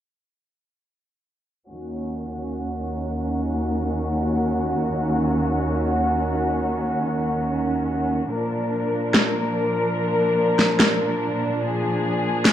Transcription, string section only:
1.69 8.27 D#2 medium
1.69 8.27 D#3 medium
1.69 8.27 C#4 medium
1.69 8.27 F#4 medium
8.31 12.53 A#2 medium
8.31 12.53 F3 medium
8.31 12.53 D4 medium
8.31 11.59 A#4 medium
11.62 12.53 G#4 medium

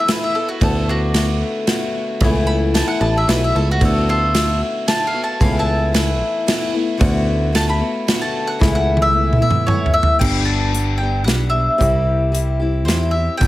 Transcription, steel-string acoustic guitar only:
0.05 0.33 E3 medium
0.05 0.33 A3 medium
0.05 0.33 B3 medium
0.05 0.32 E4 medium
0.33 0.60 A3 soft
0.33 0.60 B3 soft
0.33 0.60 E4 soft
0.60 1.13 D3 medium
0.60 1.15 A3 medium
0.60 1.16 B3 medium
0.60 1.14 F#4 medium
1.15 1.66 D3 medium
1.15 1.68 A3 medium
1.15 1.68 B3 medium
1.15 1.68 F#4 medium
1.68 2.21 D3 medium
1.68 2.24 A3 medium
1.68 2.24 B3 medium
1.68 2.22 F#4 medium
2.23 2.75 C#3 medium
2.23 2.74 E3 medium
2.23 2.75 A3 medium
2.23 2.76 B3 medium
2.23 2.76 E4 loud
2.75 3.24 E3 medium
2.75 3.26 A3 medium
2.75 3.28 B3 medium
2.75 3.27 E4 medium
3.25 3.53 E3 medium
3.25 3.54 A3 medium
3.25 3.54 B3 medium
3.25 3.52 E4 medium
3.53 3.79 A3 soft
3.53 3.80 B3 soft
3.53 3.80 E4 soft
3.79 4.33 D3 medium
3.79 4.35 A3 medium
3.79 4.36 B3 medium
3.79 4.35 F#4 medium
4.35 4.85 D3 medium
4.35 4.87 A3 medium
4.35 4.89 B3 medium
4.35 4.87 F#4 medium
4.86 5.13 D3 medium
4.86 5.14 A3 medium
4.86 5.13 B3 medium
4.86 5.13 F#4 medium
5.14 5.39 A3 soft
5.14 5.40 B3 soft
5.14 5.41 F#4 medium
5.40 5.93 C#3 medium
5.40 5.91 E3 medium
5.40 5.93 A3 medium
5.40 5.92 B3 medium
5.40 5.93 E4 medium
5.92 6.45 E3 medium
5.92 6.46 A3 medium
5.92 6.47 B3 medium
5.92 6.46 E4 medium
6.46 6.73 E3 medium
6.46 6.73 A3 medium
6.46 6.73 B3 medium
6.46 6.71 E4 medium
6.72 6.97 A3 soft
6.72 6.98 B3 medium
6.72 6.99 E4 medium
6.97 7.51 D3 medium
6.97 7.52 A3 medium
6.97 7.54 B3 loud
6.97 7.53 F#4 medium
7.53 7.80 D3 medium
7.53 7.80 A3 medium
7.53 7.79 B3 medium
7.53 7.78 F#4 medium
7.79 8.07 A3 soft
7.79 8.07 B3 soft
7.79 8.06 F#4 medium
8.07 8.59 D3 medium
8.07 8.59 A3 medium
8.07 8.60 B3 medium
8.07 8.60 F#4 medium
8.59 9.13 C#3 medium
8.59 9.11 E3 medium
8.59 9.12 A3 medium
8.59 9.13 B3 medium
8.59 9.13 E4 medium
9.13 9.40 E3 medium
9.13 9.39 A3 medium
9.13 9.39 B3 medium
9.13 9.37 E4 medium
9.38 9.65 A3 soft
9.38 9.67 B3 medium
9.38 9.66 E4 medium
9.66 10.19 E3 medium
9.66 10.20 A3 medium
9.66 10.19 B3 medium
9.66 10.21 E4 medium
10.19 10.73 G2 medium
10.19 10.73 D3 medium
10.19 10.72 G3 medium
10.19 10.73 B3 medium
10.19 10.73 D4 medium
10.19 10.74 G4 medium
10.72 11.00 G3 medium
10.72 11.01 B3 medium
10.72 11.00 D4 medium
10.72 10.99 G4 medium
11.00 11.23 G3 soft
11.00 11.24 B3 soft
11.00 11.25 D4 medium
11.00 11.26 G4 soft
11.24 11.52 G3 medium
11.24 11.53 B3 medium
11.24 11.51 D4 medium
11.24 11.51 G4 medium
11.52 11.77 G3 soft
11.52 11.78 B3 soft
11.52 11.79 D4 soft
11.52 11.79 G4 soft
11.78 12.33 C3 medium
11.78 12.31 G3 medium
11.78 12.31 C4 medium
11.78 12.32 E4 medium
11.78 12.33 G4 medium
12.32 12.60 G3 medium
12.32 12.60 C4 medium
12.32 12.60 E4 medium
12.32 12.58 G4 medium
12.59 12.86 C4 soft
12.59 12.86 E4 medium
12.59 12.87 G4 medium
12.86 13.14 G3 medium
12.86 13.14 C4 medium
12.86 13.14 E4 medium
12.86 13.12 G4 medium
13.14 13.40 C4 soft
13.14 13.40 E4 soft
13.14 13.40 G4 medium
13.39 13.47 G2 medium
13.39 13.47 D3 medium
13.39 13.47 G3 medium
13.39 13.47 B3 medium
13.39 13.47 D4 medium
13.39 13.47 G4 medium

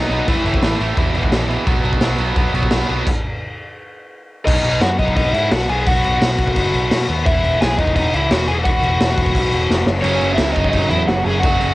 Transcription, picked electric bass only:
0.09 0.22 B1 medium
0.28 0.40 A1 medium
0.45 0.57 F#1 medium
0.62 0.74 A1 medium
0.80 0.92 A1 medium
0.97 1.09 E1 medium
1.14 1.26 E1 medium
1.32 1.56 A#1 loud
1.67 1.79 B1 medium
1.84 1.96 B1 medium
2.01 2.13 B1 loud
2.19 2.31 B1 medium
2.36 2.48 B1 medium
2.54 2.66 B1 medium
2.72 2.84 B1 medium
2.89 3.01 B1 medium
4.47 4.63 B1 loud
4.63 4.80 B1 loud
4.81 4.97 F#2 loud
4.99 5.15 B1 medium
5.17 5.33 B1 medium
5.33 5.49 G#2 loud
5.51 5.67 B1 loud
5.69 5.85 B1 medium
5.87 6.03 B1 loud
6.04 6.20 B1 loud
6.21 6.37 B1 loud
6.39 6.54 B1 medium
6.56 6.72 F#1 medium
6.74 6.89 B1 loud
6.91 7.07 B2 medium
7.09 7.24 D#2 loud
7.26 7.42 E1 loud
7.44 7.59 E1 medium
7.61 7.77 B1 medium
7.79 7.94 E1 loud
7.96 8.11 E1 loud
8.13 8.29 C#2 medium
8.30 8.46 E1 medium
8.48 8.64 E1 loud
8.65 8.81 E1 loud
8.82 8.98 E1 medium
9.00 9.16 E1 loud
9.18 9.33 E1 medium
9.35 9.51 B1 medium
9.52 9.68 E1 medium
9.69 9.85 F1 loud
9.86 10.02 F#1 loud
10.04 10.20 F#1 loud
10.21 10.37 F#1 medium
10.38 10.54 C#2 medium
10.56 10.72 F#1 medium
10.73 10.89 F#1 medium
10.90 11.06 E2 medium
11.07 11.24 F#1 medium
11.25 11.41 F#1 loud
11.44 11.59 F#1 loud
11.60 11.74 F#1 loud

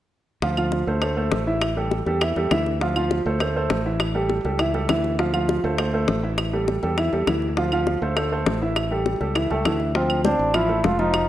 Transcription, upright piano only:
0.42 0.55 F3 medium
0.42 0.55 F4 medium
0.42 0.55 F5 medium
0.57 0.82 F3 medium
0.57 0.82 F4 medium
0.57 0.82 F5 medium
0.87 0.99 A3 medium
0.87 1.00 A4 medium
0.87 1.00 C5 medium
1.02 1.14 A3 medium
1.02 1.14 A4 medium
1.02 1.15 C5 medium
1.17 1.41 A3 medium
1.17 1.41 A4 medium
1.17 1.42 C5 medium
1.47 1.71 E3 medium
1.47 1.71 E4 medium
1.47 1.72 E5 medium
1.77 2.01 G3 medium
1.77 2.01 G4 medium
1.77 2.01 A4 medium
2.07 2.19 G3 medium
2.07 2.19 G4 medium
2.07 2.19 A4 medium
2.22 2.34 E3 medium
2.22 2.34 E4 medium
2.22 2.34 E5 medium
2.37 2.49 G3 medium
2.37 2.49 G4 medium
2.37 2.49 A4 medium
2.51 2.76 E3 medium
2.51 2.76 E4 medium
2.51 2.76 E5 medium
2.81 2.93 F3 medium
2.81 2.94 F4 medium
2.81 2.94 F5 medium
2.96 3.20 F3 medium
2.96 3.20 F4 medium
2.96 3.20 F5 medium
3.26 3.38 A3 medium
3.26 3.38 A4 medium
3.26 3.38 C5 medium
3.41 3.53 A3 medium
3.41 3.53 A4 medium
3.41 3.53 C5 medium
3.56 3.80 A3 medium
3.56 3.80 A4 medium
3.56 3.80 C5 medium
3.86 4.10 E3 medium
3.86 4.10 E4 medium
3.86 4.10 E5 medium
4.15 4.39 G3 medium
4.15 4.39 G4 medium
4.15 4.40 A4 medium
4.45 4.57 G3 medium
4.45 4.57 G4 medium
4.45 4.57 A4 medium
4.59 4.72 E3 medium
4.59 4.72 E4 medium
4.59 4.72 E5 medium
4.74 4.86 G3 medium
4.74 4.87 G4 medium
4.74 4.87 A4 medium
4.89 5.14 E3 medium
4.89 5.14 E4 medium
4.89 5.14 E5 medium
5.19 5.31 F3 medium
5.19 5.31 F4 medium
5.19 5.31 F5 medium
5.33 5.58 F3 medium
5.33 5.58 F4 medium
5.33 5.58 F5 medium
5.64 5.76 A3 medium
5.64 5.76 A4 medium
5.64 5.76 C5 medium
5.79 5.91 A3 medium
5.79 5.91 A4 medium
5.79 5.91 C5 medium
5.94 6.18 A3 medium
5.94 6.18 A4 medium
5.94 6.18 C5 medium
6.23 6.48 E3 medium
6.23 6.48 E4 medium
6.23 6.48 E5 medium
6.53 6.78 G3 medium
6.53 6.78 G4 medium
6.53 6.78 A4 medium
6.83 6.95 G3 medium
6.83 6.95 G4 medium
6.83 6.95 A4 medium
6.98 7.10 E3 medium
6.98 7.10 E4 medium
6.98 7.10 E5 medium
7.13 7.25 G3 medium
7.13 7.25 G4 medium
7.13 7.25 A4 medium
7.28 7.52 E3 medium
7.28 7.52 E4 medium
7.28 7.52 E5 medium
7.57 7.70 F3 medium
7.57 7.70 F4 medium
7.57 7.70 F5 medium
7.72 7.97 F3 medium
7.72 7.97 F4 medium
7.72 7.97 F5 medium
8.02 8.14 A3 medium
8.02 8.14 A4 medium
8.02 8.14 C5 medium
8.16 8.29 A3 medium
8.16 8.29 A4 medium
8.16 8.29 C5 medium
8.32 8.56 A3 medium
8.32 8.56 A4 medium
8.32 8.57 C5 medium
8.61 8.86 E3 medium
8.61 8.86 E4 medium
8.61 8.86 E5 medium
8.91 9.16 G3 medium
8.91 9.16 G4 medium
8.91 9.16 A4 medium
9.20 9.33 G3 medium
9.20 9.33 G4 medium
9.20 9.33 A4 medium
9.35 9.48 E3 medium
9.35 9.48 E4 medium
9.35 9.48 E5 medium
9.50 9.63 G3 medium
9.50 9.63 G4 medium
9.50 9.63 A4 medium
9.65 9.90 E3 medium
9.65 9.90 E4 medium
9.65 9.90 E5 medium
9.95 10.20 F3 medium
9.95 10.20 F4 medium
10.25 10.49 C4 medium
10.25 10.49 C5 medium
10.54 10.67 F3 medium
10.54 10.67 F4 medium
10.69 10.94 A3 medium
10.69 10.94 A4 medium
10.99 11.24 F3 medium
10.99 11.24 F4 medium

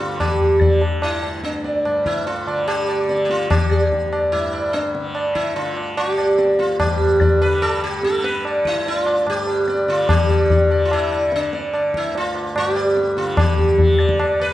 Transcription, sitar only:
0.00 0.20 F4 medium
0.21 0.78 G4 medium
0.61 0.81 D5 soft
1.03 1.41 E4 medium
1.44 1.83 D4 medium
1.65 1.84 D5 soft
1.85 2.04 D5 soft
2.06 2.26 E4 medium
2.27 2.67 F4 medium
2.48 2.67 D5 soft
2.68 3.24 G4 medium
2.89 3.08 D5 soft
3.10 3.29 D5 soft
3.25 3.30 G4 soft
3.31 3.50 F4 medium
3.50 4.08 G4 medium
3.71 3.90 D5 soft
4.12 4.32 D5 soft
4.32 4.75 E4 medium
4.53 4.72 D5 soft
4.73 5.12 D4 medium
5.15 5.34 D5 soft
5.35 5.56 E4 medium
5.56 5.97 F4 medium
5.97 6.59 G4 medium
6.20 6.38 D5 soft
6.39 6.58 D5 soft
6.59 6.79 F4 medium
6.79 7.43 G4 medium
7.21 7.41 D5 soft
7.42 7.63 B4 medium
7.62 7.83 A4 medium
7.84 8.04 G4 medium
8.04 8.23 A4 medium
8.24 8.43 B4 medium
8.47 8.65 D5 soft
8.67 8.87 E4 medium
8.87 9.00 E4 medium
8.87 9.06 D5 soft
9.00 9.29 F4 medium
9.08 9.26 D5 soft
9.30 9.89 G4 medium
9.69 9.87 D5 soft
9.88 10.10 F4 medium
9.88 10.08 D5 soft
10.10 10.67 G4 medium
10.30 10.49 D5 soft
10.51 10.70 D5 soft
10.71 10.90 D5 soft
10.85 10.92 F4 medium
10.93 11.34 E4 medium
11.12 11.31 D5 soft
11.36 11.60 D4 medium
11.54 11.73 D5 soft
11.60 11.72 C4 medium
11.74 11.93 D5 soft
11.97 12.15 E4 medium
12.17 12.57 F4 medium
12.58 13.17 G4 medium
12.77 12.95 D5 soft
13.18 13.39 F4 medium
13.39 13.96 G4 medium
14.00 14.19 D5 soft
14.20 14.39 D5 soft
14.41 14.51 B4 medium

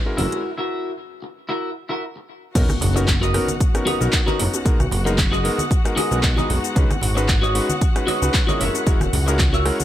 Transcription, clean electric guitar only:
0.05 muted clean electric guitar stroke soft
0.17 0.50 E4 medium
0.17 0.50 F#4 medium
0.17 0.50 A#4 loud
0.58 0.91 E4 medium
0.58 0.91 F#4 medium
0.58 0.91 A#4 medium
1.22 muted clean electric guitar stroke soft
1.49 1.69 E4 medium
1.49 1.70 F#4 medium
1.49 1.70 A#4 medium
1.89 2.02 E4 medium
1.89 2.02 F#4 medium
1.89 2.03 A#4 medium
2.16 muted clean electric guitar stroke soft
2.94 muted clean electric guitar stroke loud
3.07 muted clean electric guitar stroke soft
3.21 3.54 F#4 medium
3.21 3.54 A#4 medium
3.21 3.54 B4 medium
3.21 3.55 D#5 medium
3.86 4.07 F#4 loud
3.86 4.07 A#4 loud
3.86 4.07 B4 loud
3.86 4.07 D#5 loud
4.26 4.39 F#4 medium
4.26 4.39 A#4 medium
4.26 4.39 B4 medium
4.26 4.40 D#5 medium
4.52 muted clean electric guitar stroke soft
5.05 muted clean electric guitar stroke loud
5.17 muted clean electric guitar stroke soft
5.32 5.64 F#4 medium
5.32 5.65 G#4 medium
5.32 5.65 B4 medium
5.32 5.65 D#5 medium
5.96 6.17 F#4 loud
5.96 6.17 G#4 loud
5.96 6.17 B4 loud
5.96 6.18 D#5 loud
6.36 6.49 F#4 medium
6.36 6.49 G#4 medium
6.36 6.50 B4 medium
6.36 6.50 D#5 loud
6.63 muted clean electric guitar stroke soft
7.15 muted clean electric guitar stroke loud
7.28 muted clean electric guitar stroke soft
7.42 7.75 F#4 medium
7.42 7.75 B4 medium
7.42 7.75 C#5 medium
7.42 7.75 D#5 loud
8.07 8.27 F#4 loud
8.07 8.28 B4 loud
8.07 8.28 C#5 medium
8.07 8.28 D#5 loud
8.47 8.58 F#4 medium
8.47 8.60 B4 medium
8.47 8.59 C#5 medium
8.47 8.61 D#5 loud
8.60 9.13 F#4 loud
8.60 9.13 A#4 medium
8.60 9.13 C#5 medium
8.60 9.13 E5 loud
9.27 muted clean electric guitar stroke loud
9.39 muted clean electric guitar stroke soft
9.53 9.84 F#4 medium
9.53 9.84 A#4 medium
9.53 9.84 C#5 medium
9.53 9.84 E5 medium

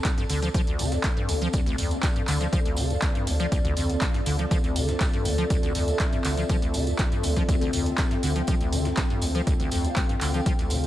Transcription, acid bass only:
0.05 0.09 D2 loud
0.18 0.24 G2 medium
0.30 0.40 D3 medium
0.42 0.49 F3 medium
0.54 0.61 F3 loud
0.67 0.81 D2 medium
0.79 0.94 D3 medium
0.92 0.99 D2 medium
1.04 1.08 D2 loud
1.17 1.30 G2 medium
1.29 1.39 D2 medium
1.42 1.48 F3 loud
1.54 1.61 D2 loud
1.66 1.76 D2 loud
1.78 1.93 F2 medium
1.91 1.98 D2 medium
2.03 2.07 D2 medium
2.16 2.23 G2 medium
2.28 2.38 D3 medium
2.41 2.47 F3 medium
2.53 2.60 F3 loud
2.65 2.79 D2 medium
2.77 2.92 D3 medium
2.90 2.97 D2 medium
3.02 3.07 D2 loud
3.15 3.29 G2 medium
3.27 3.38 D2 medium
3.40 3.46 F3 loud
3.52 3.59 D2 loud
3.65 3.75 D2 loud
3.77 3.91 F2 medium
3.89 3.96 D2 medium
4.01 4.06 D2 loud
4.14 4.21 G2 medium
4.26 4.37 D3 medium
4.39 4.46 F3 medium
4.51 4.58 F3 loud
4.64 4.77 D2 medium
4.76 4.90 D3 medium
4.89 4.95 D2 medium
5.01 5.05 D2 loud
5.13 5.27 G2 medium
5.25 5.36 D2 medium
5.38 5.45 F3 loud
5.50 5.57 D2 loud
5.63 5.73 D2 loud
5.75 5.89 F2 medium
5.88 5.94 D2 medium
6.00 6.04 D2 medium
6.13 6.19 G2 medium
6.25 6.35 D3 medium
6.37 6.44 F3 medium
6.49 6.56 F3 loud
6.62 6.76 D2 medium
6.74 6.88 D3 medium
6.87 6.94 D2 medium
6.99 7.03 D2 loud
7.12 7.25 G2 medium
7.24 7.34 D2 medium
7.37 7.43 F3 loud
7.49 7.56 D2 loud
7.61 7.71 D2 loud
7.74 7.88 F2 medium
7.86 7.93 D2 medium
7.98 8.02 D2 loud
8.11 8.18 G2 medium
8.23 8.34 D3 medium
8.36 8.42 F3 medium
8.48 8.55 F3 loud
8.61 8.74 D2 medium
8.73 8.87 D3 medium
8.85 8.92 D2 medium
8.97 9.02 D2 loud
9.10 9.24 G2 medium
9.22 9.33 D2 medium
9.35 9.41 F3 loud
9.47 9.54 D2 loud
9.60 9.70 D2 loud
9.72 9.86 F2 medium
9.85 9.91 D2 medium
9.96 10.01 D2 loud
10.09 10.16 G2 medium
10.21 10.32 D3 medium
10.34 10.41 F3 medium
10.46 10.53 F3 loud
10.59 10.72 D2 medium
10.71 10.85 D3 medium
10.84 10.87 D2 medium

